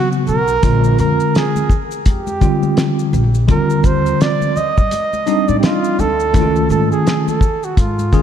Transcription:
Already playing: tine electric piano C#3 F#3 B3 F#4
0.12 maracas
0.27 upright bass B1, flugelhorn A#4, high conga, low conga, maracas, shaker
0.48 maracas
0.63 upright bass A#1, tine electric piano D3 G#3 C4 F4, kick, closed hi-hat, maracas
0.84 maracas
0.99 upright bass F2, flugelhorn A#4, closed hi-hat, shaker, maracas
1.20 maracas
1.35 flugelhorn G#4, snare, closed hi-hat, maracas
1.56 high conga, maracas
1.70 kick, low conga, shaker, maracas
1.91 maracas
2.06 upright bass F2, flugelhorn G4, kick, closed hi-hat, high conga, maracas
2.27 high conga, maracas
2.41 tine electric piano D3 G3 C4 F4, kick, closed hi-hat, shaker, maracas
2.63 high conga, maracas
2.77 snare, closed hi-hat, maracas
2.99 maracas
3.13 upright bass A#1, high conga, low conga, shaker, maracas
3.35 maracas
3.48 upright bass D#2, tine electric piano D3 G3 C4 F4, flugelhorn A#4, kick, closed hi-hat, maracas
3.70 maracas
3.84 flugelhorn C5, kick, closed hi-hat, shaker, maracas
4.06 maracas
4.21 flugelhorn D5, snare, closed hi-hat, maracas
4.42 high conga, maracas
4.56 flugelhorn D#5, low conga, shaker, maracas
4.78 upright bass G2, kick, maracas
4.91 closed hi-hat, high conga, maracas
5.13 high conga, maracas
5.26 tine electric piano G3 C4 D4 D#4, closed hi-hat, shaker, maracas
5.48 upright bass A2, flugelhorn D5, high conga, maracas
5.60 flugelhorn F4 G4, snare, closed hi-hat, maracas
5.84 maracas
5.99 upright bass D2, flugelhorn A4, high conga, low conga, maracas, shaker
6.20 maracas
6.33 upright bass C#2, tine electric piano D#3 A3 C#4 E4, kick, closed hi-hat, maracas
6.41 tine electric piano F4
6.56 maracas
6.70 upright bass G#2, flugelhorn A4, shaker, maracas
6.92 flugelhorn G#4, maracas
7.07 snare, closed hi-hat, maracas
7.28 flugelhorn A4, high conga, maracas
7.41 kick, low conga, shaker, maracas
7.63 flugelhorn F#4, maracas
7.77 upright bass G#2, flugelhorn F4, kick, closed hi-hat, high conga, maracas
7.99 high conga, maracas
8.12 tine electric piano D#3 G#3 C#4 G#4, kick, closed hi-hat, shaker, maracas

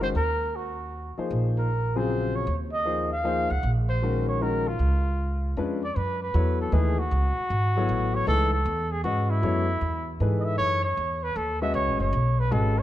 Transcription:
Already playing: upright bass F#1
0.00 upright piano D#3 G#3 C#4 F#4 C5, trumpet C5
0.15 upright bass D#2, trumpet A#4
0.56 trumpet F#4
1.18 upright piano F3 A#3 D#4 G#4 C5, muted upright bass stroke
1.31 upright bass A#1
1.58 trumpet A#4
1.95 upright piano C#3 F#3 C4 F4 G#4, trumpet C5
2.35 trumpet C#5
2.47 upright bass D#2
2.73 trumpet D#5
2.85 upright piano F3 A#3 D#4 G#4 C5
3.12 trumpet F5
3.24 upright piano F3 A#3 D#4 G#4 C5
3.50 upright bass C#2, trumpet F#5
3.63 upright bass A#1
3.89 trumpet C5
4.02 upright piano D#3 G#3 C#4 F#4 A#4
4.29 trumpet C#5
4.41 upright piano D#3 G#3 C#4 F#4 A#4, trumpet A#4
4.67 trumpet F4
4.79 upright bass C#2
5.57 upright bass F2, upright piano G#3 C#4 D4 F4 B4
5.84 trumpet D5
5.96 upright bass F#2, trumpet B4
6.22 trumpet B4
6.34 upright bass E2, upright piano F#3 B3 E4 A4 C#5
6.61 trumpet A4
6.72 upright bass D#2, upright piano E3 A3 D#4 G#4 B4, trumpet G#4
6.99 trumpet F#4
7.11 upright bass C#2
7.37 muted upright bass stroke
7.50 upright bass G#1
7.76 upright piano F#3 B3 E4 A4 C#5
7.89 upright bass A1
8.15 trumpet C#5
8.26 upright bass C#2, upright piano E3 A3 D#4 G#4 B4, trumpet A4
8.53 trumpet A4
8.65 upright bass E2
8.91 trumpet G#4
9.04 upright bass G#2, upright piano G#3 C#4 F#4 B4 D#5, trumpet F#4
9.30 trumpet E4
9.42 upright bass F#2, upright piano F#3 B3 E4 A4 C#5
9.81 upright bass E2
10.20 upright bass G#2, upright piano E3 D#4 G#4 A4 B4
10.40 trumpet D#5
10.44 trumpet E5
10.58 upright bass F#2, trumpet C#5
10.84 trumpet C#5
10.97 upright bass E2
11.23 trumpet B4
11.36 upright bass D#2, trumpet A4
11.61 upright piano G#3 C#4 F#4 B4 D#5, trumpet E5
11.74 upright bass C#2, trumpet C#5
11.88 upright bass A1
12.00 upright bass F#1, trumpet C#5
12.13 upright bass B1
12.39 trumpet B4
12.51 upright bass G#1, upright piano G#3 C#4 F#4 B4 D#5, trumpet A4
12.78 trumpet C#5

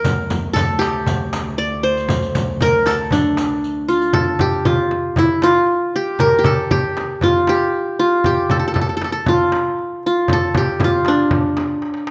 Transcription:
Already playing: qanun A#4
0.04 cello D2, riq, darbuka dum, frame drum
0.30 riq, frame drum
0.53 qanun A4, riq, darbuka dum, frame drum
0.69 darbuka ka
0.79 qanun G4, riq, darbuka tek, frame drum
1.06 riq, darbuka dum, frame drum
1.33 riq, darbuka tek, frame drum
1.58 qanun D5, riq
1.83 qanun C5, darbuka ka
1.97 riq
2.08 riq, frame drum, darbuka dum
2.22 riq
2.35 riq, frame drum, darbuka dum
2.61 qanun A#4, riq, darbuka dum, frame drum
2.86 qanun A4, riq, darbuka tek, frame drum
3.11 qanun D4, riq, darbuka dum, frame drum
3.37 riq, darbuka tek, frame drum
3.63 riq, darbuka ka
3.88 qanun F4, riq
4.02 riq
4.13 qanun A4, darbuka dum, frame drum
4.39 qanun G4, darbuka dum, frame drum
4.65 qanun F4, darbuka dum, frame drum
4.91 frame drum
5.16 qanun E4, darbuka dum, frame drum
5.42 qanun F4, darbuka tek, frame drum
5.67 darbuka ka
5.93 qanun G4, darbuka ka
6.19 qanun A#4, frame drum, darbuka dum
6.39 qanun G4
6.44 qanun A4, frame drum, darbuka dum
6.71 qanun G4, darbuka dum, frame drum
6.97 darbuka tek, frame drum
7.21 qanun F4, darbuka dum, frame drum
7.47 qanun G4, darbuka tek, frame drum
7.74 darbuka ka
7.99 qanun F4, darbuka ka
8.24 qanun G4, darbuka dum, frame drum
8.50 qanun A4, darbuka dum, frame drum
8.59 qanun A4
8.68 qanun A4
8.74 qanun A4, frame drum, darbuka dum
8.81 qanun A4
8.89 qanun A4
8.97 qanun A4
9.01 qanun A4, darbuka tek, frame drum
9.12 qanun A4
9.26 qanun F4, frame drum, darbuka dum
9.52 darbuka tek, frame drum
9.79 darbuka ka
10.03 qanun F4, darbuka ka
10.28 darbuka dum, frame drum
10.33 qanun A4
10.54 qanun G4, darbuka dum, frame drum
10.80 darbuka dum, frame drum
10.84 qanun F4
10.92 darbuka ka
11.05 qanun D4, darbuka tek, frame drum
11.31 frame drum, darbuka dum
11.57 darbuka tek, frame drum
11.82 darbuka tek
11.94 darbuka ka
12.07 darbuka tek

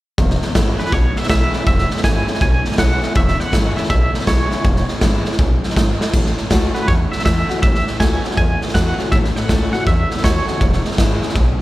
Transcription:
0.18 upright bass E1, steel-string acoustic guitar E2, kick, snare
0.30 snare
0.42 muted upright bass stroke, snare
0.55 upright bass G#1, steel-string acoustic guitar E3 G#3 C#4 E4, kick, snare, hi-hat pedal
0.78 steel-string acoustic guitar C#4 E4, clean electric guitar B4, muted upright bass stroke, snare
0.86 snare
0.92 upright bass B1, steel-string acoustic guitar B2, clean electric guitar C#5, kick, snare
1.16 clean electric guitar E5, muted upright bass stroke, snare
1.23 snare
1.28 upright bass B1, steel-string acoustic guitar E3 G#3 C#4 E4, clean electric guitar E5, kick, snare, hi-hat pedal
1.53 muted upright bass stroke, snare
1.67 upright bass E1, steel-string acoustic guitar E2, clean electric guitar E5, kick, snare
1.78 snare
1.90 muted upright bass stroke, snare
1.97 snare
2.03 upright bass G#1, steel-string acoustic guitar E3 G#3 C#4 E4, clean electric guitar G#5, kick, snare, hi-hat pedal
2.27 steel-string acoustic guitar C#4 E4, muted upright bass stroke, snare
2.35 snare
2.41 upright bass B1, steel-string acoustic guitar B2, clean electric guitar G#5, kick, snare
2.65 muted upright bass stroke, snare
2.72 snare
2.78 upright bass B1, steel-string acoustic guitar E3 G#3 C#4 E4, clean electric guitar F#5, kick, snare, hi-hat pedal
3.02 steel-string acoustic guitar C#4 E4, muted upright bass stroke, snare
3.15 upright bass E1, steel-string acoustic guitar E2, clean electric guitar E5, kick, snare
3.28 snare
3.40 clean electric guitar F#5, muted upright bass stroke, snare
3.52 upright bass G#1, steel-string acoustic guitar E3 G#3 C#4 E4, kick, snare, hi-hat pedal
3.76 steel-string acoustic guitar C#4 E4, clean electric guitar E5, muted upright bass stroke, snare
3.84 snare
3.90 upright bass B1, steel-string acoustic guitar B2, clean electric guitar E5, kick, snare
4.14 muted upright bass stroke, snare
4.21 snare
4.27 upright bass B1, steel-string acoustic guitar E3 G#3 C#4 E4, clean electric guitar C#5, kick, snare, hi-hat pedal
4.51 steel-string acoustic guitar C#4 E4, muted upright bass stroke, snare
4.65 upright bass E1, steel-string acoustic guitar E2, kick, snare
4.76 snare
4.88 muted upright bass stroke, snare
5.01 upright bass G#1, steel-string acoustic guitar E3 G#3 C#4 E4, kick, snare, hi-hat pedal
5.25 steel-string acoustic guitar C#4 E4, muted upright bass stroke, snare
5.32 snare
5.39 upright bass B1, steel-string acoustic guitar F#2, kick, snare
5.63 muted upright bass stroke, snare
5.70 snare
5.76 upright bass G#1, steel-string acoustic guitar G#2, kick, snare, hi-hat pedal
6.01 muted upright bass stroke, snare
6.14 upright bass A1, steel-string acoustic guitar A2, kick, snare, splash
6.26 snare
6.37 muted upright bass stroke, snare
6.50 upright bass C#2, steel-string acoustic guitar E3 A3 C#4 F#4, kick, snare, hi-hat pedal
6.74 steel-string acoustic guitar C#4 F#4, clean electric guitar B4, muted upright bass stroke, snare
6.88 steel-string acoustic guitar E2, upright bass E2, clean electric guitar C#5, kick, snare
7.12 clean electric guitar E5, muted upright bass stroke, snare
7.19 snare
7.25 upright bass E2, steel-string acoustic guitar E3 A3 C#4 F#4, clean electric guitar E5, kick, snare, hi-hat pedal
7.49 steel-string acoustic guitar C#4 F#4, muted upright bass stroke, snare
7.62 upright bass A1, steel-string acoustic guitar A2, clean electric guitar E5, kick, snare
7.75 snare
7.87 muted upright bass stroke, snare
8.00 upright bass C#2, steel-string acoustic guitar E3 A3 C#4 F#4, clean electric guitar G#5, kick, snare, hi-hat pedal
8.24 steel-string acoustic guitar C#4 F#4, snare
8.31 snare
8.37 upright bass E2, steel-string acoustic guitar E2, clean electric guitar G#5, kick, snare
8.62 muted upright bass stroke, snare
8.68 snare
8.74 upright bass E2, steel-string acoustic guitar E3 A3 C#4 F#4, clean electric guitar F#5, kick, snare, hi-hat pedal
8.98 steel-string acoustic guitar C#4 F#4, muted upright bass stroke, snare
9.12 upright bass A1, steel-string acoustic guitar A2, clean electric guitar E5, kick, snare
9.24 snare
9.36 clean electric guitar F#5, muted upright bass stroke, snare
9.49 upright bass C#2, steel-string acoustic guitar E3 A3 C#4 F#4, kick, snare, hi-hat pedal
9.73 steel-string acoustic guitar C#4 F#4, clean electric guitar F#5, muted upright bass stroke, snare
9.87 steel-string acoustic guitar E2, upright bass E2, clean electric guitar E5, kick, snare
10.11 muted upright bass stroke, snare
10.18 snare
10.24 upright bass D#2, steel-string acoustic guitar E3 A3 C#4 F#4, clean electric guitar C#5, kick, snare, hi-hat pedal
10.47 steel-string acoustic guitar C#4 F#4, muted upright bass stroke, snare
10.61 upright bass E1, steel-string acoustic guitar E2, kick, snare
10.73 snare
10.85 muted upright bass stroke, snare
10.92 snare
10.97 upright bass G#1, steel-string acoustic guitar E3 G#3 C#4 E4, kick, snare, hi-hat pedal
11.22 steel-string acoustic guitar C#4 E4, muted upright bass stroke, snare
11.29 snare
11.35 upright bass B1, steel-string acoustic guitar B2, kick, snare

